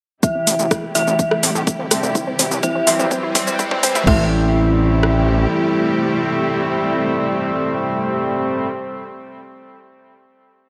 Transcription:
0.23 C3 G3 A3 E4 G4 E5, kick, riser, shaker
0.35 C4
0.47 A1 A3, open hi-hat, shaker
0.59 A1 A3, shaker
0.71 C4, kick, cross-stick, shaker
0.83 A3
0.95 A1 A3 E4 E5, open hi-hat, shaker
1.07 A1 C4, shaker
1.19 A3, kick, shaker
1.31 A3, cross-stick
1.43 A2 C4, open hi-hat, shaker
1.55 A2 A3, shaker
1.67 A3, kick, shaker
1.79 C2 C4
1.91 G3 A3 C4, cross-stick, open hi-hat, shaker
2.03 C2 A3, shaker
2.15 E3 E4, kick, shaker
2.27 C4
2.39 A1 C4, open hi-hat, shaker
2.51 E2 E4, shaker
2.63 C4 E4 E5, kick, shaker
2.75 C4
2.87 A1 E3 G3 C4 E4, open hi-hat, shaker
2.99 A1 C4, shaker
3.11 C4, kick, shaker
3.23 E4
3.35 A1 E3 G3 C4, kick, open hi-hat, shaker
3.47 A1 C4, shaker
3.59 E4, kick, shaker
3.71 A1 C4, kick
3.83 C4, kick, open hi-hat, shaker
3.95 A1 E4, kick, shaker
4.07 A1 C3 G3 A3 C4 E4 G4 E5, kick, crash
5.03 cross-stick

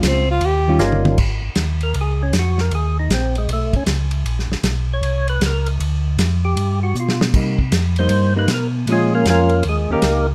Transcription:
Already playing: G#3 C#4 F4
0.02 C#2, snare, hi-hat pedal, ride
0.07 C4
0.31 F4
0.41 D#2, ride
0.45 G4
0.68 D#3 G3 C#4 F4
0.79 G1 G3 A#3 C#4 D#4 F4, snare, hi-hat pedal
0.92 high tom
1.05 high tom
1.18 G#1, kick, crash
1.42 G#1
1.55 D#2, snare, hi-hat pedal, ride
1.81 A#4, ride
1.94 C#2, ride
2.01 G#4
2.23 C#4
2.33 F2, snare, hi-hat pedal, ride
2.39 F#4
2.58 A#4, snare
2.71 D#2 G#4, ride
2.99 D#4
3.09 A#1, snare, hi-hat pedal, ride
3.14 C4
3.35 G#3, ride
3.48 B1, ride
3.53 A3
3.73 B1 C#4, kick, ride
3.86 C#2, snare, hi-hat pedal, ride
4.11 ride
4.25 A#1, ride
4.39 snare
4.49 A#1, snare
4.63 B1, snare, hi-hat pedal, ride
4.93 C#5
5.02 C2, ride
5.28 B4, ride
5.41 C#2, snare, hi-hat pedal, ride
5.46 A#4
5.66 ride
5.80 D2, ride
6.17 F2, snare, hi-hat pedal, ride
6.45 G4
6.56 G2, ride
6.83 F#4
6.95 B2, hi-hat pedal
7.00 F4
7.09 snare
7.21 snare
7.33 C3 G3 A#3 D#4, kick, crash
7.59 kick
7.71 F2, snare, hi-hat pedal, ride
7.96 G3 A#3 C5, ride
8.00 D#4
8.09 G2, ride
8.36 G3 A#3 D#4 B4
8.48 B2, snare, hi-hat pedal, ride
8.54 A#4
8.87 A#2 F3 G#3 C#4, ride
8.91 G#3 C#4 F4 G#4
9.15 A#3 C#4 F4 A#4
9.26 F2 C#4, snare, hi-hat pedal, ride
9.30 A#3 F4 A#4
9.49 ride
9.63 D#2, ride
9.69 G#3 G#4
9.89 D#2 D#3 A#3 C#4 G4 A#4
9.93 D#4
10.02 C#2, snare, hi-hat pedal, ride

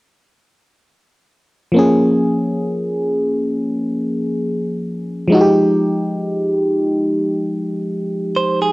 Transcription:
1.72 F3 A#3
1.76 C#4 G#4
5.28 F3 G#3
5.32 D#4 F#4
5.41 G4
8.36 C5
8.62 G#4

